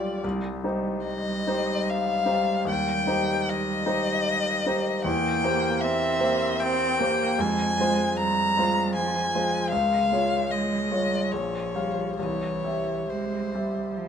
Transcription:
Already playing: cello G3, grand piano F4 G4 D5, violin D5
0.24 grand piano C2, cello G3
0.64 grand piano D#4 G4 C5
1.06 violin D#5
1.47 grand piano D#4 G4 C5
1.89 violin F5
2.26 grand piano D#4 G4 C5
2.65 grand piano D#2
2.69 violin G5
3.07 grand piano D#4 G4 C5
3.49 violin D#5
3.86 grand piano D#4 G4 C5
4.66 grand piano D#4 G4 C5
5.04 grand piano E2, cello A#3, violin G5
5.44 grand piano A#3 G4 C5
5.80 cello C4, violin E5
6.20 grand piano A#3 G4 C5
6.60 cello C4, violin G5
7.00 cello A#3, grand piano A#3 G4 C5
7.39 grand piano F2, cello G#3, violin G#5
7.77 cello G#3, grand piano G#3 F4
7.81 grand piano C5
8.17 cello G3, violin A#5
8.57 grand piano G#3 F4 C5
8.93 cello F3, violin G#5
9.33 cello F3, grand piano G#3 F4 C5
9.71 grand piano C#2, cello G#3, violin F5
10.11 grand piano G#3 F4 C#5
10.51 cello G#3, violin D#5
10.91 cello G3, grand piano G#3 F4 C#5
11.31 grand piano A#1, cello F3, violin C#5
11.74 grand piano G3 G4 F5
12.18 grand piano C2, cello E3, violin C#5
12.64 grand piano G3 G4 E5
13.09 cello G#3, violin C5
13.54 cello G3, grand piano G3 G4 E5
13.97 cello F3

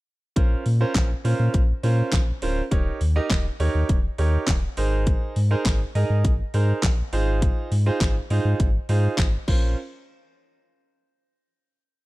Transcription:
0.36 sub bass A#1, grand piano C#4 F4 A#4 C5, kick, closed hi-hat
0.66 sub bass A#2, open hi-hat
0.81 grand piano C#4 F4 A#4 C5
0.95 sub bass A#1, kick, snare, clap, closed hi-hat
1.24 sub bass A#2, grand piano C#4 F4 A#4 C5, open hi-hat
1.39 sub bass A#2
1.54 sub bass A#1, kick, closed hi-hat
1.83 sub bass A#2, grand piano C#4 F4 A#4 C5, open hi-hat
2.12 sub bass A#1, kick, snare, clap, closed hi-hat
2.42 sub bass D1, grand piano C#4 F4 A#4 C5, open hi-hat
2.71 sub bass D#1, grand piano D#4 G4 A#4 C#5, kick, closed hi-hat
3.01 sub bass D#2, open hi-hat
3.16 grand piano D#4 G4 A#4 D#5
3.30 sub bass D#1, kick, snare, clap, closed hi-hat
3.60 sub bass D#2, grand piano D#4 G4 A#4 C#5, open hi-hat
3.75 sub bass D#2
3.89 sub bass D#1, kick, closed hi-hat
4.18 sub bass D#2, grand piano D#4 G4 A#4 C#5, open hi-hat
4.47 sub bass D#1, kick, snare, clap, closed hi-hat
4.77 sub bass G#1, grand piano D#4 G#4 A#4 C5, open hi-hat
5.07 kick, closed hi-hat
5.36 sub bass G#2, open hi-hat
5.51 grand piano D#4 G#4 A#4 C5
5.65 sub bass G#1, kick, snare, clap, closed hi-hat
5.95 sub bass G#2, grand piano D#4 G#4 A#4 D#5, open hi-hat
6.10 sub bass G#2
6.24 sub bass G#1, kick, closed hi-hat
6.54 sub bass G#2, grand piano D#4 G#4 A#4 C5, open hi-hat
6.83 sub bass A#1, kick, snare, clap, closed hi-hat
7.13 sub bass G#1, grand piano D#4 F4 G#4 C5, open hi-hat
7.42 kick, closed hi-hat
7.71 sub bass G#2, open hi-hat
7.86 grand piano D#4 F4 G#4 C5
8.01 sub bass G#1, kick, snare, clap, closed hi-hat
8.30 sub bass G#2, grand piano D#4 F4 G#4 C5, open hi-hat
8.45 sub bass G#2
8.60 sub bass G#1, kick, closed hi-hat
8.89 sub bass G#2, grand piano D#4 F4 G#4 C5, open hi-hat
9.18 sub bass G#1, kick, snare, clap, closed hi-hat
9.48 sub bass A#1, grand piano C#4 F4 A#4 C5, kick, crash

